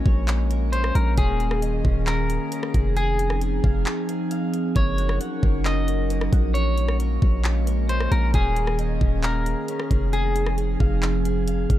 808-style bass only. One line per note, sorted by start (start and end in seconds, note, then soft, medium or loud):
0.06 0.92 A#1 loud
0.95 1.17 A#1 loud
1.18 1.82 D#1 loud
1.85 2.38 D#1 loud
2.74 3.60 F1 loud
3.64 3.85 F1 loud
4.76 5.19 F#1 loud
5.43 6.29 F#1 loud
6.33 7.19 A#1 loud
7.22 8.08 A#1 loud
8.12 8.33 A#1 loud
8.34 8.98 D#1 loud
9.01 9.55 D#1 loud
9.91 10.77 F1 loud
10.80 11.66 F1 loud
11.70 11.79 F1 loud